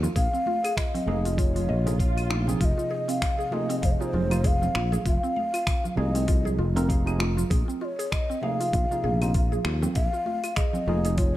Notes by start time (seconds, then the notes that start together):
0.03 F4, high bongo, high conga, low conga, shaker
0.16 A#1 G#4 F5, kick, open hi-hat, shaker
0.33 C4, shaker
0.46 F4, high conga
0.64 G#4, open hi-hat, high bongo, claves, shaker
0.77 F4 D#5, finger snap, kick, open hi-hat, shaker
0.94 C4, open hi-hat, low conga, shaker
1.06 F1 C3 F3 A#3 D#4 G#4 F5, high bongo, high conga
1.25 F4, open hi-hat, shaker
1.33 D#5
1.38 F4 C#5, kick, open hi-hat, swell, shaker
1.56 F4, open hi-hat, low conga, shaker
1.69 A#1 D#5, high bongo
1.84 C3 F3 A#3 D#4 F4 G#4, open hi-hat, high bongo, shaker
1.99 F5, kick, open hi-hat, shaker
2.17 F4, open hi-hat, claves, shaker
2.30 D#4, finger snap, high conga
2.45 C3 F3 A#3 C4 D#4 G#4, low conga, shaker
2.60 F1 F4 F5, kick, open hi-hat, shaker
2.65 D#5
2.78 F4, shaker
2.91 G#4
3.08 C4 F5, open hi-hat, shaker
3.22 F4, finger snap, kick, open hi-hat, shaker
3.39 G#4, shaker
3.51 C3 F3 A#3 D#4 F4 G#4 D#5, high bongo, high conga
3.69 C4, open hi-hat, shaker
3.82 F1 C5 F5, kick, open hi-hat, shaker
3.91 D#5
3.99 C3 F3 A#3 D#4 F4 G#4 C#5, shaker
4.04 C5
4.13 F1 F4, high conga, low conga
4.30 C3 F3 A#3 D#4 F4, open hi-hat, claves, shaker
4.44 G#4 F5, kick, open hi-hat, high bongo, shaker
4.62 C4, low conga, shaker
4.75 A#1 F4, finger snap, claves
4.92 G#4, high bongo, high conga, low conga, shaker
5.06 F1 F4 F5, kick, open hi-hat, shaker
5.23 C4, shaker
5.36 F5, high conga
5.54 F4, open hi-hat, claves, shaker
5.67 F4, finger snap, kick, open hi-hat, shaker
5.84 F4, low conga, shaker
5.95 C2 C3 F3 A#3 D#4 G#4 D#5, high bongo, high conga
6.15 C4, open hi-hat, shaker
6.28 F4, kick, open hi-hat, shaker
6.45 G#4, low conga, shaker
6.58 F1 F4, high bongo
6.75 C3 F3 A#3 C4 D#4 A#4, open hi-hat, high bongo, shaker
6.87 C3 F3 A#3 D#4 G#4 F5, kick, open hi-hat, shaker
7.05 C3 F3 A#3 D#4 F4 G#4, claves, shaker
7.19 F4, finger snap, high conga
7.37 F4, low conga, shaker
7.50 A#1 G#4, kick, open hi-hat, shaker
7.68 C4, shaker
7.81 F4 C#5 D#5
7.99 G#4, open hi-hat, shaker
8.12 F4 D#5, finger snap, kick, open hi-hat, shaker
8.30 C4, shaker
8.41 C3 F3 A#3 D#4 G#4 F5, high bongo, high conga
8.60 F4, open hi-hat, shaker
8.73 A#1 F4, kick, open hi-hat, shaker
8.90 C3 F3 A#3 D#4 F4 G#4, shaker
9.04 A#1 G#4, high conga, low conga
9.21 C3 F3 A#3 C4 D#4 F4, open hi-hat, claves, shaker
9.34 F4, kick, open hi-hat, high bongo, shaker
9.52 G#4, low conga, shaker
9.65 D#2 F4, finger snap, claves
9.82 C4, high bongo, high conga, low conga, shaker
9.95 A#1 F5, kick, open hi-hat, shaker
10.13 F4, shaker
10.26 F4, high conga
10.44 F4, open hi-hat, claves, shaker
10.56 G#4 D#5, finger snap, kick, open hi-hat, shaker
10.73 C4, low conga, shaker
10.87 F1 C3 F3 A#3 D#4 F4 G#4, high bongo, high conga
11.05 G#4, open hi-hat, shaker
11.18 F4 C#5, kick, open hi-hat, shaker